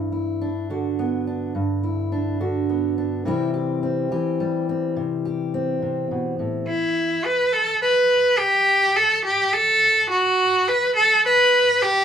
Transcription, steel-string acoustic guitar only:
Already playing: G2 E3 E4
0.12 E4
0.41 D4
0.70 D3 F#4
0.99 B3
1.27 D4
1.55 G2
1.83 E4
2.12 D4
2.40 D3 F#4
2.69 B3
2.98 D4
3.25 C3 E3 G3 C4 E4
3.54 G4
3.83 C4
4.11 E3 G4
4.40 G3
4.69 C4
4.96 C3
5.25 G4
5.54 C4
5.82 C3
6.11 B2
6.39 A2

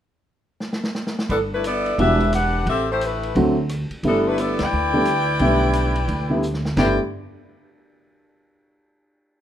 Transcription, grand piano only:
1.99 E3 G3 B3 D4 F#4
3.36 D3 F#3 A3 C4 F#4
4.04 D3 G3 A3 B3 E4
4.93 D3 G3 A3 B3 D4
5.41 D3 G3 A3 B3 E4
6.30 D3 G3 A3 B3 E4
6.78 D3 G3 A3 B3 E4

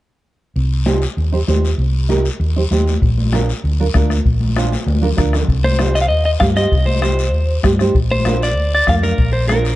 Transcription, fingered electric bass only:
0.56 C2
1.17 D#2
1.48 D#2
1.78 C2
2.40 D#2
2.71 D#2
3.01 A#1
3.64 D2
3.94 D2
4.25 A#1
4.86 D2
5.18 D2
5.48 C2
6.11 D#2
6.41 G2
6.72 C2
7.33 D#2
7.64 G2
7.95 A#1
8.56 D2
8.87 F2
9.18 A#1

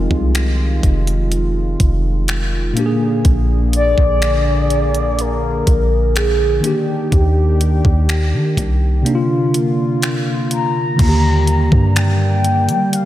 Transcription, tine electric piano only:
Already playing: F3 C4 D#4 G4 G#4
2.74 A#2 A#3
2.78 D4 G4
2.86 G#4
6.61 D#3 A#3 D4
6.67 G4
9.03 C3 A#3 D4
9.09 D#4
9.15 F4
10.96 D3 D#3 A#3
11.02 F4
11.09 G4

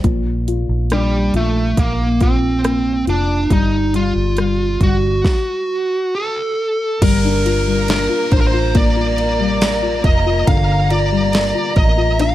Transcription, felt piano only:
0.04 A#2
0.48 F4
0.91 D4
1.35 F4
1.78 A#3
2.21 F4
2.64 A#3
3.07 F4
3.51 G3
3.94 G3
4.38 G3
4.81 G3
7.02 G3
7.24 D4
7.46 F4
7.67 G3
7.88 D4
8.09 F4
8.32 D4
8.53 F4
8.75 A#3
8.96 F4
9.39 G3
9.82 F4
10.26 F4
10.47 D3
10.91 F4
11.12 G3
11.55 F4
11.97 F4
12.19 D4

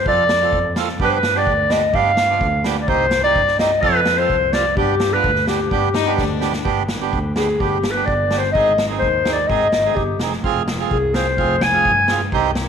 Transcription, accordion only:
0.06 C4 F4 A4
0.41 C4 F4 A4
0.76 C4 F4 A4
1.00 B3 D4 G4
1.35 B3 D4 G4
1.69 B3 D4 G4
1.93 B3 D4 G4
2.28 B3 D4 F4
2.64 B3 D4 G4
2.88 C4 D#4 G4
3.23 C4 D#4 G4
3.59 C4 D#4 G4
3.82 C4 F4 A4
4.19 C4 F4 A4
4.54 C4 F4 G4
4.77 B3 D4 G4
5.13 B3 D4 F4
5.47 B3 D4 G4
5.70 B3 D4 G4
6.05 B3 D4 G4
6.40 B3 D4 G4
6.64 B3 D4 G4
7.01 B3 D4 G4
7.35 B3 D4 G4
7.59 B3 D4 G4
7.95 B3 D4 G4
8.30 B3 D4 G4
8.54 C4 D#4 G#4
8.89 C4 D#4 G#4
9.25 C4 D#4 G#4
9.49 C4 D#4 G#4
9.84 C4 D#4 G#4
10.21 C4 D#4 G#4
10.44 C4 F4 G#4
10.78 C4 F4 G#4
11.14 C4 F4 G#4
11.37 C4 F4 G#4
11.72 C4 F4 G#4
12.08 C4 F4 G#4
12.32 C4 D#4 G4

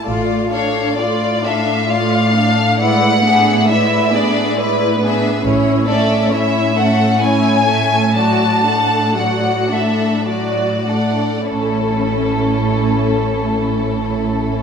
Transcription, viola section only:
0.05 A3 F4
0.51 D4
0.98 A3 F4
1.44 D4
1.90 A3 F4
2.35 D4
2.80 G#3 E4
3.25 B3 D4
3.69 G#3 E4
4.12 B3 D4
4.57 G#3 E4
5.01 B3 D4
5.45 C#4 E4
5.87 A3 C#4
6.32 C#4 E4
6.77 A3 C#4
7.23 C#4 E4
7.70 A3 C#4
8.17 F#3 F#4
8.66 A3 D4
9.17 F#3 F#4
9.71 A3 D4
10.28 F#3 F#4
10.90 A3 D4
11.49 A3 C#4

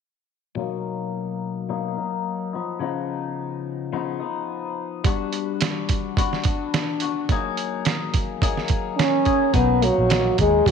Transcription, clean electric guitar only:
0.56 B2 F#3 A#3 D#4
1.69 B2 F#3 A#3 D#4
1.97 F#3 A#3 D#4
2.53 F3 B3 D#4
2.79 C#3 F3 B3 D#4
3.92 C#3 F3 B3 D#4
4.20 F3 B3 D#4
5.04 G3 B3 D4 F#4
6.17 G3 B3 D4 F#4
6.45 B3 D4 F#4
7.02 B3 D4 F#4
7.29 F#3 A#3 D#4 G#4
8.42 F#3 A#3 D#4 G#4
9.25 A#3 D#4 G#4
9.54 B2 F#3 A#3 D#4
9.82 F#3 A#3 D#4
10.09 B2 F#3 A#3 D#4
10.37 F#3 A#3 D#4
10.66 B2 F#3 A#3 D#4

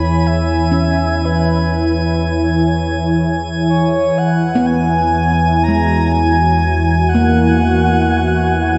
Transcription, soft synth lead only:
Already playing: B5
0.27 E5
1.25 B4
3.70 C#5
4.18 F#5
4.66 G#5
5.64 A#5
6.12 G#5
7.09 F#5

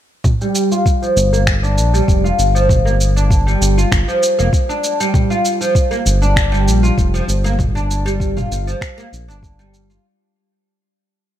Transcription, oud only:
0.41 G3
0.72 F4
1.02 F3
1.33 A#3
1.63 D4
1.94 G3
2.24 F4
2.55 F3
2.85 A#3
3.16 D4
3.47 G3
3.78 F4
4.08 F3
4.39 A#3
4.69 D4
5.00 G3
5.30 F4
5.61 F3
5.91 A#3
6.22 D4
6.52 G3
6.83 F4
7.14 F3
7.44 A#3
7.75 D4
8.06 G3
8.37 F4
8.67 F3
8.98 A#3
9.28 D4
9.59 G3
9.90 F4

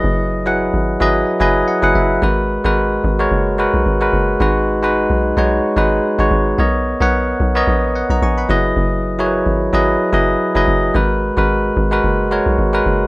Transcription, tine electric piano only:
Already playing: F#3 E4 G#4 B4 D#5
0.46 F#3 E4 G#4 B4 F#5
1.00 F#3 E4 G#4 B4 D#5
1.40 F#3 E4 G#4 B4 D#5 G#5
1.68 F#5
1.82 F#3 E4 G#4 B4 F#5
1.95 E5
2.22 G#3 F#4 A#4 B4
2.64 G#3 F#4 A#4 B4
3.19 G#3 F#4 A#4 C#5
3.58 G#3 F#4 A#4 B4
4.01 G#3 F#4 A#4 B4
4.40 G#3 D#4 F#4 B4
4.82 G#3 D#4 F#4 B4
5.37 G#3 D#4 F#4 C#5
5.76 G#3 D#4 F#4 B4
6.19 G#3 D#4 F#4 C#5
6.58 B3 A#4 C#5 D#5
7.01 B3 A#4 C#5 F#5
7.55 B3 A#4 C#5 D#5
7.95 C#5 F#5
8.10 D#5 A#5
8.23 G#5 C#6
8.38 F#5 B5
8.49 F#3 E4 G#4 B4 D#5
9.19 F#3 E4 G#4 A#4 C#5
9.26 B4
9.73 F#3 E4 G#4 B4 D#5
10.12 F#3 E4 G#4 B4 D#5
10.55 F#3 E4 G#4 B4 D#5
10.94 G#3 F#4 A#4 B4
11.37 G#3 F#4 A#4 B4
11.91 G#3 F#4 A#4 B4
12.31 G#3 F#4 A#4 C#5
12.73 G#3 F#4 A#4 B4

